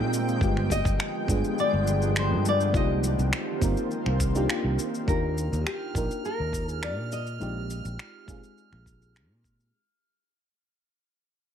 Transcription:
0.00 0.38 A#2 medium
0.00 0.38 D#3 medium
0.00 0.39 G#3 medium
0.00 0.41 G#3 medium
0.00 0.38 A#3 medium
0.00 0.39 C4 medium
0.00 0.44 C4 medium
0.00 0.44 D#4 medium
0.00 0.43 F4 medium
0.00 0.44 G4 loud
0.00 0.39 G#4 loud
0.00 2.71 G5 medium
0.13 shaker medium
0.29 shaker soft
0.41 0.82 G1 medium
0.41 2.72 D3 medium
0.41 1.26 D3 medium
0.41 2.73 F3 medium
0.41 1.25 G#3 medium
0.41 2.72 G#3 medium
0.41 1.26 B3 medium
0.41 2.72 B3 medium
0.41 1.27 F4 medium
0.41 1.27 G4 loud
0.41 kick loud
0.41 shaker soft
0.57 finger snap soft
0.70 1.26 D#5 loud
0.70 kick medium
0.70 shaker medium
0.85 0.97 G1 loud
0.85 kick loud
0.85 shaker soft
1.00 finger snap loud
1.00 shaker soft
1.27 1.41 G2 medium
1.27 2.71 G#3 medium
1.27 2.71 B3 medium
1.27 2.71 D4 medium
1.27 2.72 F4 medium
1.27 2.72 G#4 loud
1.27 kick loud
1.27 shaker medium
1.44 shaker soft
1.58 2.19 D5 loud
1.58 shaker soft
1.74 2.33 G1 loud
1.87 shaker medium
2.02 shaker soft
2.16 2.48 C5 loud
2.16 finger snap loud
2.16 shaker soft
2.32 2.71 G2 medium
2.46 2.74 D5 loud
2.46 shaker medium
2.61 shaker soft
2.73 3.15 C2 loud
2.73 5.05 D#3 medium
2.73 3.58 A#3 medium
2.73 5.05 A#3 medium
2.73 3.58 C4 medium
2.73 5.06 C4 medium
2.73 3.59 D#4 medium
2.73 5.05 F4 medium
2.73 3.59 F4 medium
2.73 3.59 G4 loud
2.73 5.05 C5 medium
2.73 4.46 D#5 loud
2.73 kick loud
2.73 shaker soft
3.04 shaker medium
3.19 3.31 C2 loud
3.19 shaker soft
3.33 finger snap loud
3.33 shaker soft
3.60 3.74 G1 medium
3.60 4.32 A#3 medium
3.60 4.32 C4 medium
3.60 4.32 D#4 medium
3.60 4.33 F4 medium
3.60 4.33 A#4 medium
3.60 kick loud
3.60 shaker medium
3.77 shaker soft
3.91 shaker soft
4.06 4.46 C2 loud
4.06 finger snap soft
4.20 kick medium
4.20 shaker medium
4.35 4.46 A#3 medium
4.35 4.46 D4 medium
4.35 4.46 D#4 medium
4.35 4.47 F4 medium
4.35 4.47 G4 loud
4.35 shaker soft
4.49 5.04 A#3 medium
4.49 5.04 D4 medium
4.49 5.05 D#4 medium
4.49 5.05 F4 medium
4.49 5.05 G4 loud
4.49 finger snap loud
4.49 shaker soft
4.64 4.76 C2 medium
4.79 shaker medium
4.94 shaker soft
5.07 5.48 D#2 medium
5.07 5.91 A#3 medium
5.07 5.92 D4 medium
5.07 5.92 D#4 medium
5.07 5.93 F4 medium
5.07 5.93 G4 medium
5.07 5.66 A#4 medium
5.07 9.75 F6 medium
5.07 kick loud
5.07 shaker soft
5.38 shaker medium
5.52 5.64 D#2 medium
5.52 shaker soft
5.66 6.25 G4 medium
5.66 finger snap loud
5.66 shaker soft
5.94 6.08 A#1 medium
5.94 7.10 A#3 medium
5.94 7.10 D4 medium
5.94 7.10 D#4 medium
5.94 7.11 F4 medium
5.94 7.11 A#4 loud
5.94 kick loud
5.94 shaker medium
6.11 shaker soft
6.25 6.71 A#4 medium
6.25 shaker soft
6.40 6.98 D#2 loud
6.53 kick medium
6.53 shaker medium
6.69 6.85 G#4 medium
6.69 shaker soft
6.83 7.12 D5 loud
6.83 finger snap medium
6.83 shaker soft
6.98 7.37 A#2 medium
7.12 9.12 D#5 medium
7.12 shaker medium
7.27 shaker soft
7.39 7.81 A#1 medium
7.39 8.24 G#3 medium
7.39 8.24 C4 medium
7.39 8.25 D#4 medium
7.39 8.25 F4 medium
7.39 8.26 G4 medium
7.39 shaker soft
7.70 shaker medium
7.85 7.97 A#1 medium
7.85 shaker soft
7.99 finger snap loud
7.99 shaker soft
8.27 8.41 A#2 medium
8.27 9.70 G#3 medium
8.27 9.70 C4 medium
8.27 9.71 D#4 medium
8.27 9.71 F4 medium
8.27 9.71 G#4 medium
8.27 kick loud
8.27 shaker medium
8.43 shaker soft
8.58 shaker soft
8.72 9.31 A#1 medium
8.72 finger snap soft
8.86 kick medium
8.86 shaker medium
9.02 shaker soft
9.16 finger snap medium
9.16 shaker soft
9.31 9.70 A#2 medium
9.44 kick medium
9.44 shaker medium
9.60 shaker soft

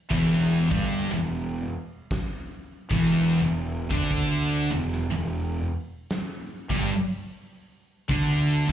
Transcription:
0.10 0.67 E1 medium
0.10 0.69 E2 medium
0.10 0.70 E3 loud
0.10 kick medium
0.10 crash loud
0.71 1.08 G1 medium
0.71 1.10 G2 medium
0.71 1.10 G3 loud
0.71 kick loud
1.11 1.67 E1 medium
1.11 1.59 E2 medium
1.11 open hi-hat medium
2.11 kick loud
2.11 snare loud
2.11 open hi-hat medium
2.91 3.37 E1 loud
2.91 3.39 E2 medium
2.91 3.40 E3 loud
2.91 kick loud
3.11 open hi-hat medium
3.41 3.88 E1 medium
3.41 3.83 E2 medium
3.91 4.67 D2 medium
3.91 4.69 D3 medium
3.91 4.69 D4 medium
3.91 kick loud
4.11 kick loud
4.11 open hi-hat medium
4.71 5.08 E1 medium
4.71 5.02 E2 medium
4.92 snare soft
5.10 5.66 E1 medium
5.10 5.59 E2 medium
5.10 open hi-hat medium
6.10 snare loud
6.10 open hi-hat medium
6.70 6.89 G1 loud
6.70 6.89 G2 medium
6.70 6.89 G3 loud
6.70 kick loud
7.10 open hi-hat medium
8.09 8.65 D2 loud
8.09 8.67 D3 medium
8.09 8.68 D4 loud
8.09 kick loud
8.09 open hi-hat medium
8.69 8.72 E3 loud

